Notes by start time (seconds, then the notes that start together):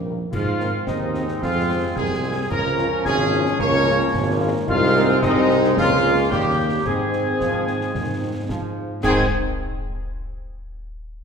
Already playing: A#1
0.06 D#3 G3 A#3
0.31 G#2 G#3 C4 F4 F5, concert bass drum, crash
0.60 D#3 G#3 A#3 C4, snare
0.87 D#2 C4 D#4 D#5, concert bass drum, snare
1.14 D#3 G#3 A#3 C4, snare
1.28 snare
1.41 F2 G#3 F4 F5, concert bass drum, snare
1.68 G#3 C4
1.96 C2 A#3 G#4 G#5, concert bass drum, snare
2.23 G#3 C4
2.50 C#2 F3 C#4 A#4 A#5, concert bass drum, crash
2.78 G#3 F4, snare
3.05 G#1 C#4 G#4 G#5, concert bass drum, snare
3.32 G#3 F4, snare
3.46 snare
3.59 C#2 A#3 C#5 C#6, concert bass drum, snare
3.86 G#3 F4
4.14 G#1, concert bass drum, snare
4.41 G#3 F4
4.68 C2 G#3 C4 D#4 F4 F5, concert bass drum, crash
4.95 A#3, snare
5.22 C2 G#3 C4 D#4 D#5, concert bass drum, snare
5.50 snare
5.64 snare
5.77 C#2 G#3 A#3 C#4 F4 F5, concert bass drum, snare
6.31 D#2 D#3 G3 A#3 G4 G5, concert bass drum, snare
6.58 A#3
6.85 G#2 D#3 G#3 C4 G#4 G#5, concert bass drum, crash
7.13 snare
7.40 G#2 F3, concert bass drum, snare
7.67 snare
7.81 snare
7.95 G#2 D#3, concert bass drum, snare
8.49 G#2 F3, concert bass drum, snare
9.03 G#2 D#3 G#3 C4 G#4 G#5, concert bass drum, snare, crash